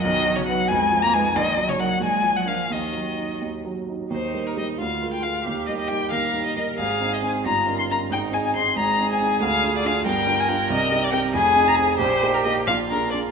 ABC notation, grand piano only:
X:1
M:6/8
L:1/8
Q:3/8=91
K:Ebm
V:1 name="Grand piano"
=B,,, ^F, [^D=B] =F,, =F, [Ec] | B,,, G, [EB] B,,, F, [=DB] | E,, G, E E,, G, E | [K:Eb] [E,,E,] [G,GB] [G,GB] [D,,D,] [A,FB] [A,FB] |
[E,,E,] [G,EB] [G,EB] [E,,E,] [G,EB] [G,EB] | [A,,,A,,] [CEc] [CEc] [G,,,G,,] [_DEB] [DEB] | [A,,,A,,] [CEA] [CEA] [A,,,A,,] [CEA] [CEA] | [D,,D,] [DFA] [DFA] [G,,,G,,] [DFB] [DFB] |
[C,,C,] [CEG] [CEG] [F,,,F,,] [CEA] [CEA] | [B,,,B,,] [B,EG] [B,EG] [B,,,B,,] [B,DA] [B,DA] |]